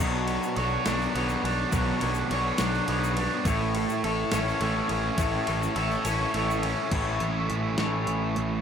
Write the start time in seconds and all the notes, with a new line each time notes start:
Already playing: B2
0.00 B1 F#3 B3 D4 F#4 C#5, shaker
0.26 B3 D4 F#4 C#5, ride, shaker
0.43 shaker
0.56 B1 B3 D4 F#4 C#5, ride
0.85 B1 B2 F#3 B3 D4 F#4 C#5, snare, ride, shaker
1.01 shaker
1.13 B1 B3 D4 F#4 C#5, ride
1.29 shaker
1.44 B1 D4, ride
1.72 B1 B2 F#3 B3 D4 F#4 C#5, kick, ride, shaker
2.00 B1 B3 D4 F#4 C#5, ride, shaker
2.14 shaker
2.30 B1 B3 D4 F#4 C#5, ride
2.58 B1 B2 F#3 B3 D4 F#4 C#5, snare, ride, shaker
2.75 shaker
2.88 B1 B3 D4 F#4 C#5, ride
3.04 shaker
3.17 D4, ride
3.45 A1 A2 A3 E4 A4 C#5, kick, ride, shaker
3.75 E4 A4 C#5, ride, shaker
3.89 shaker
4.03 A1 A3 E4 A4 C#5, ride
4.32 A1 A3 C#4 E4 A4 C#5, snare, ride, shaker
4.49 shaker
4.61 A1 A3 E4 A4 C#5, ride
4.89 A1 C#4, ride
5.18 A1 A2 A3 E4 A4 C#5, kick, ride, shaker
5.47 A1 E4 A4 C#5, ride, shaker
5.63 shaker
5.76 A1 A3 E4 A4 C#5, ride
5.91 shaker
6.05 A1 A3 C#4 E4 A4 C#5, ride, shaker
6.34 A1 A3 E4 A4 C#5, ride
6.50 shaker
6.63 C#4, ride
6.91 A1 A2 E3 A3 C#4 E4 A4 C#5, kick, closed hi-hat, crash
7.20 A1, closed hi-hat
7.50 A1, closed hi-hat
7.78 A1 A4 C#5, snare, closed hi-hat
7.82 A3 E4
8.07 A1, closed hi-hat
8.36 A1, closed hi-hat